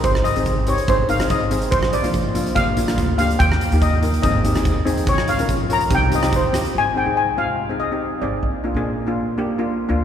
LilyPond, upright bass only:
\new Staff \with { instrumentName = "Upright bass" } { \clef bass \time 4/4 \key aes \major \tempo 4 = 143 aes,,8 r16 aes,,4~ aes,,16 aes,,8 aes,,16 r16 aes,,4 | bes,,8 r16 bes,,4~ bes,,16 bes,,8 bes,,8 d,4 | ees,8 r16 ees,4~ ees,16 aes,,8 aes,,8 f,4 | bes,,8 r16 bes,,4~ bes,,16 c,8 c,8 ees,4 |
aes,,8. aes,2 r8. aes,,8 | bes,,8. bes,2 r8. d,8 | }